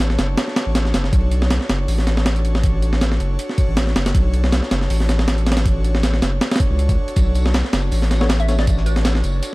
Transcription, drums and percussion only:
0.10 snare soft
0.19 snare loud
0.19 closed hi-hat medium
0.38 snare loud
0.38 closed hi-hat medium
0.48 snare soft
0.56 snare loud
0.56 closed hi-hat medium
0.75 snare loud
0.75 closed hi-hat medium
0.85 snare soft
0.94 snare loud
0.94 closed hi-hat medium
1.04 snare soft
1.13 kick loud
1.13 closed hi-hat medium
1.31 closed hi-hat medium
1.42 snare medium
1.50 snare loud
1.50 closed hi-hat medium
1.61 snare soft
1.69 snare loud
1.69 closed hi-hat medium
1.88 open hi-hat medium
1.98 snare soft
2.07 snare medium
2.07 closed hi-hat medium
2.17 snare medium
2.26 snare loud
2.26 closed hi-hat medium
2.36 closed hi-hat soft
2.45 closed hi-hat medium
2.55 snare medium
2.63 kick loud
2.63 closed hi-hat medium
2.82 closed hi-hat medium
2.93 snare medium
3.01 snare loud
3.01 closed hi-hat medium
3.12 snare soft
3.20 closed hi-hat medium
3.39 closed hi-hat medium
3.49 snare soft
3.58 kick loud
3.58 closed hi-hat medium
3.77 snare loud
3.77 closed hi-hat medium
3.87 snare soft
3.96 snare loud
3.96 closed hi-hat medium
4.06 snare loud
4.06 closed hi-hat medium
4.15 kick loud
4.15 closed hi-hat medium
4.34 closed hi-hat medium
4.44 snare medium
4.52 snare loud
4.52 closed hi-hat medium
4.63 snare soft
4.71 snare loud
4.71 closed hi-hat medium
4.81 snare soft
4.90 open hi-hat medium
5.00 snare soft
5.09 snare medium
5.09 closed hi-hat medium
5.19 snare medium
5.28 snare loud
5.28 closed hi-hat medium
5.38 closed hi-hat soft
5.47 snare medium
5.47 closed hi-hat medium
5.52 snare medium
5.52 closed hi-hat medium
5.57 snare loud
5.57 closed hi-hat medium
5.66 kick loud
5.66 closed hi-hat medium
5.84 closed hi-hat medium
5.95 snare medium
6.03 snare loud
6.03 closed hi-hat medium
6.14 snare soft
6.22 snare loud
6.22 closed hi-hat medium
6.41 snare loud
6.41 closed hi-hat medium
6.51 snare medium
6.51 closed hi-hat medium
6.56 snare medium
6.56 closed hi-hat medium
6.60 kick loud
6.60 closed hi-hat medium
6.79 closed hi-hat medium
6.89 kick loud
6.89 closed hi-hat medium
7.08 closed hi-hat medium
7.16 kick loud
7.16 closed hi-hat medium
7.16 tambourine medium
7.35 closed hi-hat medium
7.35 tambourine medium
7.46 snare medium
7.54 snare loud
7.54 closed hi-hat medium
7.54 tambourine medium
7.65 snare soft
7.73 snare loud
7.73 closed hi-hat medium
7.73 tambourine medium
7.91 open hi-hat medium
7.91 tambourine medium
8.02 snare soft
8.11 snare medium
8.11 closed hi-hat medium
8.11 tambourine medium
8.21 snare medium
8.29 snare loud
8.29 closed hi-hat medium
8.29 tambourine medium
8.40 closed hi-hat soft
8.48 snare medium
8.48 closed hi-hat medium
8.48 tambourine medium
8.59 snare medium
8.67 kick loud
8.67 closed hi-hat medium
8.67 tambourine medium
8.77 snare soft
8.86 closed hi-hat medium
8.86 tambourine medium
8.96 snare medium
8.96 closed hi-hat soft
9.05 snare loud
9.05 closed hi-hat medium
9.05 tambourine medium
9.15 snare soft
9.24 closed hi-hat medium
9.24 tambourine medium
9.42 closed hi-hat medium
9.42 tambourine medium

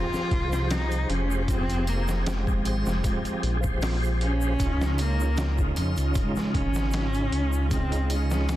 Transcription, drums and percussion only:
0.13 snare soft
0.13 shaker soft
0.31 kick loud
0.31 closed hi-hat medium
0.53 snare soft
0.53 shaker medium
0.70 snare loud
0.70 closed hi-hat medium
0.70 shaker medium
0.91 closed hi-hat soft
0.91 shaker soft
1.10 closed hi-hat medium
1.31 shaker medium
1.48 kick loud
1.48 closed hi-hat medium
1.48 shaker medium
1.69 closed hi-hat soft
1.69 shaker soft
1.87 closed hi-hat medium
1.87 triangle medium
2.08 snare soft
2.08 shaker medium
2.26 snare loud
2.26 closed hi-hat medium
2.26 shaker medium
2.47 kick loud
2.47 shaker soft
2.65 closed hi-hat medium
2.65 triangle medium
2.86 snare soft
2.86 shaker medium
3.04 kick loud
3.04 closed hi-hat medium
3.04 shaker medium
3.25 closed hi-hat soft
3.25 shaker soft
3.43 closed hi-hat medium
3.63 kick medium
3.63 shaker medium
3.82 snare loud
3.82 open hi-hat medium
3.82 shaker medium
4.04 shaker soft
4.21 closed hi-hat medium
4.41 shaker medium
4.59 kick loud
4.59 closed hi-hat medium
4.59 shaker medium
4.81 snare soft
4.81 shaker soft
4.98 closed hi-hat medium
4.98 triangle medium
5.20 shaker medium
5.37 snare loud
5.37 closed hi-hat medium
5.37 shaker medium
5.58 kick medium
5.58 shaker soft
5.76 closed hi-hat medium
5.76 triangle medium
5.97 closed hi-hat soft
5.97 shaker medium
6.14 kick loud
6.14 closed hi-hat medium
6.14 shaker medium
6.36 snare soft
6.36 shaker soft
6.54 kick medium
6.54 closed hi-hat medium
6.74 snare soft
6.74 shaker medium
6.91 snare loud
6.91 closed hi-hat medium
6.91 shaker medium
7.13 closed hi-hat soft
7.13 shaker soft
7.32 closed hi-hat medium
7.53 shaker medium
7.71 kick loud
7.71 closed hi-hat medium
7.71 shaker medium
7.92 closed hi-hat soft
7.92 shaker soft
8.10 closed hi-hat medium
8.10 triangle medium
8.31 snare soft
8.31 shaker medium
8.49 snare loud
8.49 closed hi-hat medium
8.49 shaker medium

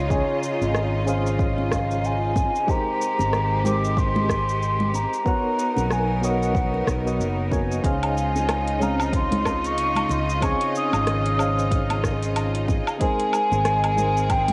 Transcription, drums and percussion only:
0.10 kick loud
0.10 shaker soft
0.43 shaker medium
0.62 high conga medium
0.62 shaker soft
0.75 cross-stick medium
0.75 shaker soft
1.08 shaker medium
1.27 shaker soft
1.39 kick loud
1.39 shaker soft
1.58 high conga medium
1.72 kick medium
1.72 cross-stick medium
1.72 shaker medium
1.91 shaker soft
2.04 shaker soft
2.36 kick loud
2.36 high conga medium
2.36 shaker medium
2.55 shaker soft
2.68 kick loud
2.68 shaker soft
3.02 shaker medium
3.19 high conga medium
3.19 shaker soft
3.33 cross-stick medium
3.33 shaker soft
3.65 low conga medium
3.65 shaker medium
3.84 shaker soft
3.97 kick loud
3.97 shaker soft
4.15 high conga medium
4.15 low conga medium
4.29 kick medium
4.29 cross-stick medium
4.29 shaker medium
4.49 shaker soft
4.62 shaker soft
4.80 low conga medium
4.94 high conga medium
4.94 shaker medium
5.13 shaker soft
5.26 kick loud
5.26 shaker soft
5.59 shaker medium
5.77 high conga loud
5.77 shaker soft
5.91 cross-stick medium
5.91 shaker soft
6.24 shaker medium
6.42 shaker soft
6.55 kick loud
6.55 shaker soft
6.74 high conga medium
6.87 kick medium
6.87 cross-stick medium
6.87 shaker medium
7.07 shaker soft
7.21 shaker soft
7.52 kick loud
7.52 high conga medium
7.52 shaker medium
7.72 shaker soft
7.84 kick loud
7.84 closed hi-hat medium
7.84 shaker soft
8.03 closed hi-hat soft
8.03 low woodblock medium
8.17 shaker medium
8.36 high conga medium
8.36 shaker soft
8.49 cross-stick medium
8.49 closed hi-hat medium
8.49 low woodblock medium
8.49 shaker soft
8.68 closed hi-hat soft
8.81 low conga medium
8.81 shaker medium
9.00 low woodblock medium
9.00 shaker soft
9.13 kick loud
9.13 closed hi-hat medium
9.13 shaker soft
9.32 closed hi-hat soft
9.32 high conga medium
9.32 low conga medium
9.45 kick medium
9.45 cross-stick medium
9.45 low woodblock medium
9.45 shaker medium
9.64 closed hi-hat soft
9.64 shaker soft
9.78 closed hi-hat medium
9.78 shaker soft
9.96 closed hi-hat soft
9.96 low conga medium
9.96 low woodblock medium
10.09 high conga medium
10.09 shaker medium
10.30 shaker soft
10.42 kick loud
10.42 closed hi-hat medium
10.42 low woodblock medium
10.42 shaker soft
10.61 closed hi-hat soft
10.76 shaker medium
10.93 high conga medium
10.93 low woodblock medium
10.93 shaker soft
11.07 cross-stick medium
11.07 closed hi-hat medium
11.07 shaker soft
11.26 closed hi-hat soft
11.39 low woodblock medium
11.39 shaker medium
11.59 shaker soft
11.71 kick loud
11.71 closed hi-hat medium
11.71 shaker soft
11.90 closed hi-hat soft
11.90 high conga medium
11.90 low woodblock medium
12.04 kick medium
12.04 cross-stick medium
12.04 shaker medium
12.23 closed hi-hat soft
12.23 shaker soft
12.36 closed hi-hat medium
12.36 low woodblock medium
12.36 shaker soft
12.55 closed hi-hat soft
12.68 kick loud
12.68 high conga medium
12.68 shaker medium
12.87 low woodblock medium
12.87 shaker soft
13.01 kick loud
13.01 closed hi-hat medium
13.01 shaker soft
13.19 closed hi-hat soft
13.33 low woodblock medium
13.33 shaker medium
13.52 high conga medium
13.52 shaker soft
13.65 cross-stick medium
13.65 closed hi-hat medium
13.65 shaker soft
13.84 closed hi-hat soft
13.84 low woodblock medium
13.98 low conga medium
13.98 shaker medium
14.17 shaker soft
14.30 kick loud
14.30 closed hi-hat medium
14.30 low woodblock medium
14.30 shaker soft
14.48 closed hi-hat soft
14.48 high conga medium
14.48 low conga medium

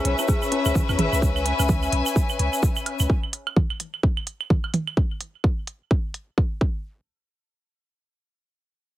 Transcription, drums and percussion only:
0.05 closed hi-hat medium
0.19 claves medium
0.19 shaker medium
0.28 kick loud
0.28 shaker medium
0.42 claves soft
0.42 shaker soft
0.52 closed hi-hat medium
0.65 claves medium
0.65 shaker medium
0.75 kick loud
0.75 mid tom medium
0.75 shaker medium
0.89 claves medium
0.89 high woodblock medium
0.89 shaker soft
0.99 closed hi-hat medium
0.99 mid tom medium
1.13 claves soft
1.13 shaker medium
1.22 kick loud
1.22 shaker medium
1.36 claves medium
1.36 shaker soft
1.46 closed hi-hat medium
1.59 claves medium
1.59 high woodblock medium
1.59 shaker medium
1.68 kick loud
1.68 mid tom medium
1.68 shaker medium
1.83 claves soft
1.83 shaker soft
1.92 closed hi-hat loud
2.06 claves medium
2.06 shaker medium
2.16 kick loud
2.16 shaker medium
2.29 claves medium
2.29 shaker soft
2.39 closed hi-hat medium
2.53 claves soft
2.53 shaker medium
2.63 kick loud
2.63 shaker medium
2.76 claves medium
2.76 shaker soft
2.86 closed hi-hat medium
2.86 high woodblock medium
3.00 claves medium
3.00 shaker medium
3.10 kick loud
3.23 claves soft
3.33 closed hi-hat medium
3.47 claves medium
3.47 high woodblock medium
3.56 kick loud
3.56 mid tom medium
3.70 claves medium
3.80 closed hi-hat loud
3.94 claves soft
4.03 kick loud
4.17 claves medium
4.27 closed hi-hat medium
4.41 claves medium
4.50 kick loud
4.50 mid tom medium
4.64 claves soft
4.64 high woodblock medium
4.74 closed hi-hat medium
4.74 mid tom medium
4.87 claves medium
4.97 kick loud
5.21 closed hi-hat medium
5.44 kick loud
5.67 closed hi-hat medium
5.91 kick loud
6.14 closed hi-hat medium
6.38 kick loud
6.61 kick loud

